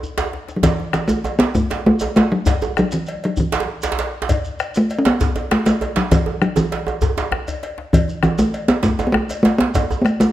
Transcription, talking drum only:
Already playing: A3
0.56 F#3
0.64 E3
0.93 E3
1.08 A3
1.39 B3
1.55 A3
1.86 A3
2.16 A3
2.32 F#3
2.79 F#3
2.93 E3
3.25 F#3
3.40 E3
4.77 A3
4.99 C#4
5.06 B3
5.52 A3
5.66 A3
5.97 F#3
6.12 E3
6.42 F#3
6.57 E3
7.93 E3
8.23 E3
8.39 A3
8.68 B3
8.83 A3
9.07 B3
9.12 A3
9.43 A3
9.58 B3
10.02 A3 B3
10.20 A3

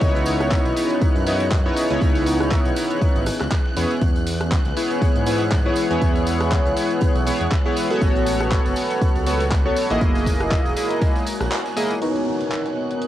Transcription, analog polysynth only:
Already playing: B3 D#4 E4 C#5
0.77 B3 D#4 E4 C#5
1.27 B3 D#4 E4 C#5
1.66 B3 D#4 E4 C#5
1.90 B3 D#4 E4 C#5
2.76 B3 D#4 E4 C#5
3.77 B3 E4 G#4 C#5
4.76 B3 E4 G#4 C#5
5.26 B3 E4 G#4 C#5
5.65 B3 E4 G#4 C#5
5.90 B3 E4 G#4 C#5
6.76 B3 E4 G#4 C#5
7.26 B3 E4 G#4 C#5
7.65 B3 E4 G#4 C#5
7.90 B3 F#4 A4 C#5
8.76 B3 F#4 A4 C#5
9.26 B3 F#4 A4 C#5
9.65 B3 F#4 A4 C#5
9.90 A#3 E4 G#4 D#5
10.76 A#3 E4 G#4 D#5
11.76 A#3 E4 G#4 D#5
12.01 B3 D#4 A#4 C#5

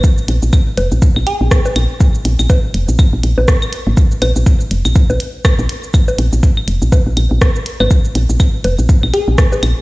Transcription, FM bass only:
0.28 A#1
0.43 A#1
0.78 F1
0.92 A#1
1.16 A#1
1.41 A#1
1.76 A#1
2.25 A#1
2.39 A#1
2.74 F1
2.88 A#1
3.13 A#1
3.23 A#1
3.38 A#1
3.87 G#1
4.22 A#1
4.36 A#1
4.71 F1
4.85 A#1
5.10 A#1
5.59 A#1
6.18 A#1
6.33 A#1
6.68 F1
6.82 A#1
7.06 A#1
7.17 A#1
7.31 A#1
7.80 G#1
8.15 A#1
8.29 A#1
8.64 F1
8.79 A#1
9.03 A#1
9.28 A#1
9.63 A#1

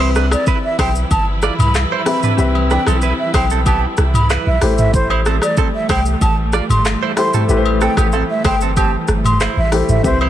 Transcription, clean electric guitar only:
0.00 E4 C5
0.16 D4 B4
0.48 E4 B4
0.80 E4 C5
1.44 F4 D5
1.92 E4 C5
2.24 D4 B4
2.71 D4 B4
2.88 C4 A4
3.03 E4 B4
3.35 E4 C5
3.51 C4 A4
3.67 B3 G4
4.31 E4 B4
5.11 E4 C5
5.26 C4 A4
5.58 C4 A4
5.90 E4 C5
6.54 F4 D5
7.03 E4 C5
7.34 C4 A4
7.82 C4 A4
7.98 B3 G4
8.14 C4 A4
8.45 E4 C5
8.62 C4 A4
8.77 C4 G4
9.41 E4 C5
10.22 E4 C5

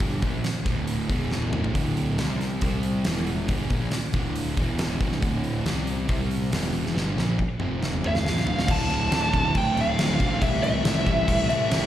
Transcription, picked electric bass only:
0.00 G1
0.22 A#1
0.45 muted picked electric bass stroke
0.65 D1
1.10 E1
1.54 D1
1.75 D1
2.20 C2
2.62 C2
3.06 E1
3.49 G1
3.70 A#1
3.93 muted picked electric bass stroke
4.14 D1
4.57 E1
5.01 D1
5.22 D1
5.66 C2
6.09 C2
6.51 E1
6.96 G1
7.17 A#1
7.39 muted picked electric bass stroke
7.61 F1
8.03 A1
8.24 A#1
8.45 D1
8.68 D1
8.89 D1
9.10 D1
9.33 D1
9.55 D1
9.77 D1
9.99 D1
10.20 B1
10.42 C2
10.64 C2
10.84 C2
11.07 C2
11.28 C2
11.50 C2
11.70 C2

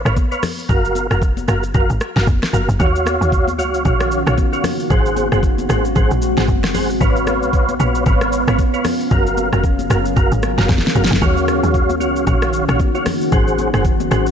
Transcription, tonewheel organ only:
0.05 B4 C#5 F5
0.31 B4 C#5 F5
0.69 F#4 A#4 F5
1.10 F#4 A#4 F5
1.48 F#4 A#4 F5
1.74 F#4 A#4 F5
2.16 F#4 A#4 F5
2.53 F#4 A#4 F5
2.79 F#4 C#5 F5
3.58 F#4 C#5 F5
3.85 F#4 C#5 F5
4.26 F#4 C#5 F5
4.53 F#4 C#5 F5
4.90 G#4 C5 F#5
5.32 G#4 C5 F#5
5.69 G#4 C5 F#5
5.96 G#4 C5 F#5
6.37 G#4 C5 F#5
6.74 G#4 C5 F#5
7.01 B4 C#5 F5
7.79 B4 C#5 F5
8.06 B4 C#5 F5
8.48 B4 C#5 F5
8.74 B4 C#5 F5
9.11 F#4 A#4 F5
9.53 F#4 A#4 F5
9.90 F#4 A#4 F5
10.16 F#4 A#4 F5
10.57 F#4 A#4 F5
10.95 F#4 A#4 F5
11.21 F#4 C#5 F5
12.00 F#4 C#5 F5
12.27 F#4 C#5 F5
12.68 F#4 C#5 F5
12.95 F#4 C#5 F5
13.32 G#4 C5 F#5
13.74 G#4 C5 F#5
14.11 G#4 C5 F#5

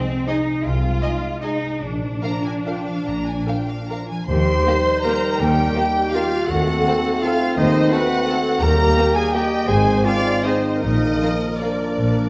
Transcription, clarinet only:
4.29 C5
5.04 A#4
5.40 G4
6.14 F4
6.50 F#4
7.22 F4
7.58 D#4
7.92 F#4
8.63 A#4
9.16 G#4
9.35 G4
9.68 G#4
10.05 F4
10.44 D#4
10.83 D#4
11.61 D4

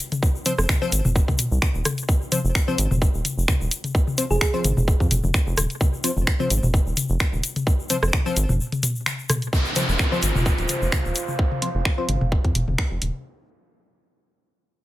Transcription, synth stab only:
0.46 F3 C4 C5
0.82 F3 C4 C5
2.32 F3 C4 C5
2.68 F3 C4 C5
4.18 F3 C4 C5
4.54 F3 C4 C5
6.04 F3 C4 C5
6.40 F3 C4 C5
7.90 F3 C4 C5
8.26 F3 C4 C5
9.76 F3 C4 C5
10.12 F3 C4 C5
11.62 F3 C4 C5
11.98 F3 C4 C5

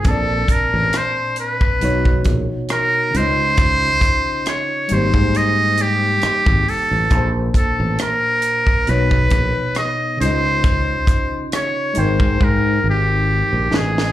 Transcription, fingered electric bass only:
0.05 A#1
0.74 A1
1.83 B1
2.26 A#1
3.14 C#2
4.91 G#1
5.14 G#2
6.24 muted fingered electric bass stroke
6.47 G#1
6.91 A1
7.11 A#1
7.80 A1
8.89 B1
9.32 A#1
10.21 C#2
11.97 G#1
12.20 G#2
12.41 G#2
12.84 G#1
13.53 A#1
13.72 A1

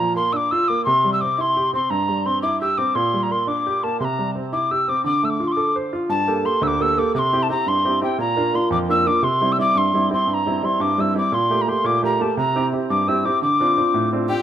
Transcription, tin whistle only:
Already playing: A#5
0.16 C6
0.32 D6 E6
0.51 E6
0.68 D6
0.85 C6
1.13 E6
1.21 D6
1.37 C6 D6
1.74 C6
1.90 A#5
2.26 C6
2.42 D6
2.61 E6
2.77 D6
2.95 C6
3.23 A#5
3.32 C6
3.48 D6
3.83 A5
4.00 C6
4.04 A#5
4.53 D6
4.71 E6
4.89 D6
5.05 D6
5.25 E6
5.30 D6
5.47 C6
5.52 D6
6.10 A5
6.45 C6
6.63 E6
6.67 D6
6.82 E6
6.98 D6
7.15 C6 D6
7.42 A5
7.51 A#5
7.68 C6
8.03 G5
8.20 A#5
8.55 C6
8.72 D6
8.90 E6
9.07 D6
9.24 C6
9.52 E6
9.60 D6
9.77 C6
10.13 C6
10.29 C6
10.34 A#5
10.65 C6
10.81 D6
11.00 E6
11.17 D6
11.34 C6
11.61 A#5
11.69 C6
11.86 D6
12.05 A#5
12.21 A5
12.38 A#5
12.90 D6
13.08 E6
13.25 D6
13.42 D6
14.29 G5

